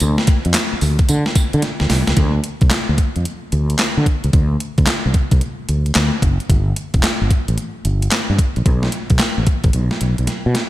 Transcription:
0.00 fretless electric bass D2, closed hi-hat, tambourine
0.18 snare
0.27 kick, closed hi-hat
0.45 fretless electric bass F2, closed hi-hat
0.54 snare, clap, closed hi-hat, tambourine
0.73 muted fretless electric bass stroke
0.81 fretless electric bass D2, open hi-hat, tambourine
0.99 kick, closed hi-hat
1.09 fretless electric bass D3, closed hi-hat, tambourine
1.26 snare
1.35 muted fretless electric bass stroke, kick, closed hi-hat, tambourine
1.53 fretless electric bass D3, closed hi-hat
1.62 snare, closed hi-hat
1.80 fretless electric bass D2, snare
1.90 fretless electric bass C2, snare, open hi-hat
2.07 fretless electric bass C#2, snare, closed hi-hat
2.17 fretless electric bass D2, kick, closed hi-hat
2.44 closed hi-hat
2.61 fretless electric bass C2, kick, closed hi-hat
2.71 snare, clap, closed hi-hat
2.89 fretless electric bass D2
2.98 kick, closed hi-hat
3.16 fretless electric bass F2, closed hi-hat
3.25 closed hi-hat
3.52 fretless electric bass D2, closed hi-hat
3.70 closed hi-hat
3.79 snare, clap, closed hi-hat
3.97 fretless electric bass D3
4.06 kick, closed hi-hat
4.24 fretless electric bass C#2, closed hi-hat
4.33 fretless electric bass D2, kick, closed hi-hat
4.60 closed hi-hat
4.78 fretless electric bass D2, kick, closed hi-hat
4.87 snare, clap, closed hi-hat
5.06 fretless electric bass C2
5.14 kick, closed hi-hat
5.31 fretless electric bass C2, kick, closed hi-hat
5.41 closed hi-hat
5.69 fretless electric bass D2, closed hi-hat
5.86 closed hi-hat
5.95 fretless electric bass D2, snare, clap, closed hi-hat
6.22 fretless electric bass F#1, kick, closed hi-hat
6.40 closed hi-hat
6.50 fretless electric bass G1, kick, closed hi-hat
6.76 closed hi-hat
6.94 fretless electric bass F1, kick, closed hi-hat
7.03 snare, clap, closed hi-hat
7.21 fretless electric bass G1
7.30 kick, closed hi-hat
7.48 fretless electric bass A1, closed hi-hat
7.58 closed hi-hat
7.85 fretless electric bass G1, closed hi-hat
8.02 closed hi-hat
8.11 snare, clap, closed hi-hat
8.30 fretless electric bass G2
8.39 kick, closed hi-hat
8.56 fretless electric bass A#1, closed hi-hat
8.66 fretless electric bass B1, kick, closed hi-hat
8.83 snare
8.92 closed hi-hat
9.10 fretless electric bass B1, kick, closed hi-hat
9.19 snare, clap, closed hi-hat
9.38 fretless electric bass A1
9.47 kick, closed hi-hat
9.64 fretless electric bass A1, kick, closed hi-hat
9.73 fretless electric bass B1, closed hi-hat
9.91 snare
10.01 fretless electric bass B1, closed hi-hat
10.18 fretless electric bass B1, closed hi-hat
10.27 snare, closed hi-hat
10.46 fretless electric bass B2
10.55 snare, closed hi-hat

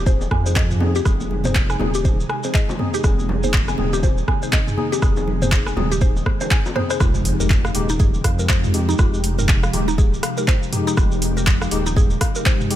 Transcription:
Already playing: detuned saw bass D#1, ambient pad C3 D#3 G#3 D#4 G#4
0.06 tine electric piano C4 D#4 G#4, synth pluck C5, kick, high bongo, maracas
0.21 low bongo, maracas
0.31 detuned saw bass F2, synth pluck G#5, kick, cross-stick, high conga
0.46 tine electric piano C4 D#4 G#4, synth pluck C5, maracas
0.55 synth pluck D#5, kick, clap, low bongo, maracas
0.71 mid tom, maracas
0.80 tine electric piano C4 D#4 G#4, low bongo, high conga
0.95 synth pluck G4, maracas
1.05 detuned saw bass F1, tine electric piano C4 D#4 G#4, synth pluck G#4, kick, cross-stick, maracas
1.20 low bongo, high conga, maracas
1.31 low conga
1.44 tine electric piano C4 D#4 G#4, synth pluck C5, mid tom, low bongo, high conga, maracas
1.55 kick, clap, maracas
1.70 synth pluck G#5, cross-stick, maracas
1.79 detuned saw bass D#1, tine electric piano C4 D#4 G#4, high bongo, low bongo, high conga, low conga
1.94 synth pluck G4, maracas
2.04 tine electric piano C4 D#4 G#4, synth pluck C5, kick, low bongo, maracas
2.20 maracas
2.29 synth pluck G#5, cross-stick
2.43 tine electric piano C4 D#4 G#4, synth pluck C5, low bongo, maracas
2.54 synth pluck D#5, kick, clap, maracas
2.69 high bongo, low bongo, maracas
2.79 tine electric piano C4 D#4 G#4, mid tom, high conga
2.94 synth pluck G4, maracas
3.04 detuned saw bass F1, tine electric piano C4 D#4 G#4, synth pluck G#4, kick, cross-stick, low bongo, maracas
3.19 high conga, maracas
3.29 low bongo, low conga
3.43 tine electric piano C4 D#4 G#4, synth pluck C5, high conga, maracas
3.53 kick, clap, maracas
3.68 synth pluck G#5, cross-stick, low bongo, maracas
3.78 detuned saw bass D#1, tine electric piano C4 D#4 G#4, high conga, low conga
3.93 synth pluck G4, low bongo, maracas
4.03 tine electric piano C4 D#4 G#4, synth pluck C5, kick, high bongo, maracas
4.18 maracas
4.28 synth pluck G#5, kick, cross-stick, low bongo, high conga
4.43 tine electric piano C4 D#4 G#4, synth pluck C5, maracas
4.52 synth pluck D#5, kick, clap, low bongo, maracas
4.67 mid tom, maracas
4.77 tine electric piano C4 D#4 G#4, high conga
4.92 synth pluck G4, low bongo, maracas
5.02 detuned saw bass F1, tine electric piano C4 D#4 G#4, synth pluck G#4, kick, cross-stick, maracas
5.16 low bongo, high conga, maracas
5.28 low conga
5.42 tine electric piano C4 D#4 G#4, synth pluck C5, mid tom, high conga, maracas
5.52 kick, clap, low bongo, maracas
5.66 synth pluck G#5, cross-stick, maracas
5.77 detuned saw bass D#1, tine electric piano C4 D#4 G#4, high bongo, low bongo, high conga, low conga
5.92 synth pluck G4, maracas
6.01 tine electric piano C4 D#4 G#4, synth pluck C5, kick, maracas
6.16 low bongo, maracas
6.26 synth pluck C5, kick, cross-stick, high conga
6.41 tine electric piano C4 D#4 G#4, synth pluck C5, low bongo, maracas
6.51 synth pluck G#5, kick, clap, maracas
6.66 high bongo, maracas
6.76 tine electric piano C4 D#4 G#4, synth pluck C5, cross-stick, mid tom, low bongo, high conga
6.90 synth pluck C5, cross-stick, maracas
7.00 detuned saw bass F1, ambient pad C3 F3 G#3 D#4 G4, tine electric piano G#3 G4, synth pluck F4, kick, cross-stick, impact, maracas
7.15 maracas
7.25 open hi-hat
7.40 tine electric piano G#3 D#4 G4, synth pluck A#4, maracas
7.50 kick, clap, maracas
7.65 synth pluck F5, cross-stick, maracas
7.75 detuned saw bass D#1, tine electric piano G#3 D#4 G4, open hi-hat
7.89 synth pluck D#4, maracas
7.99 tine electric piano G#3 D#4 G4, synth pluck G#4, kick, mid tom, maracas
8.14 maracas
8.24 detuned saw bass F2, synth pluck F5, kick, cross-stick, open hi-hat
8.39 tine electric piano G#3 D#4 G4, synth pluck A#4, maracas
8.49 synth pluck C5, kick, clap, maracas
8.64 mid tom, maracas
8.74 tine electric piano G#3 D#4 G4, open hi-hat
8.89 synth pluck D#4, maracas
8.98 detuned saw bass F1, tine electric piano G#3 D#4 G4, synth pluck F4, kick, cross-stick, maracas
9.14 maracas
9.24 open hi-hat
9.38 tine electric piano G#3 D#4 G4, synth pluck A#4, mid tom, maracas
9.49 kick, clap, maracas
9.63 synth pluck F5, cross-stick, maracas
9.73 detuned saw bass D#1, tine electric piano G#3 D#4 G4, open hi-hat
9.88 synth pluck D#4, maracas
9.98 tine electric piano G#3 D#4 G4, synth pluck G#4, kick, maracas
10.14 maracas
10.23 synth pluck F5, cross-stick, open hi-hat
10.37 tine electric piano G#3 D#4 G4, synth pluck A#4, maracas
10.48 synth pluck C5, kick, clap, maracas
10.63 maracas
10.73 tine electric piano G#3 D#4 G4, mid tom, open hi-hat
10.87 synth pluck D#4, maracas
10.97 detuned saw bass F1, tine electric piano G#3 D#4 G4, synth pluck F4, kick, cross-stick, maracas
11.12 maracas
11.22 open hi-hat
11.37 tine electric piano G#3 D#4 G4, synth pluck A#4, maracas
11.47 kick, clap, maracas
11.61 synth pluck F5, cross-stick, maracas
11.71 detuned saw bass D#1, tine electric piano G#3 D#4 G4, open hi-hat
11.86 synth pluck D#4, maracas
11.96 tine electric piano G#3 D#4 G4, synth pluck G#4, kick, mid tom, maracas
12.10 maracas
12.21 synth pluck F5, kick, cross-stick, open hi-hat
12.35 tine electric piano G#3 D#4 G4, synth pluck A#4, maracas
12.46 synth pluck C5, kick, clap, maracas
12.61 mid tom, maracas
12.71 tine electric piano G#3 D#4 G4, open hi-hat

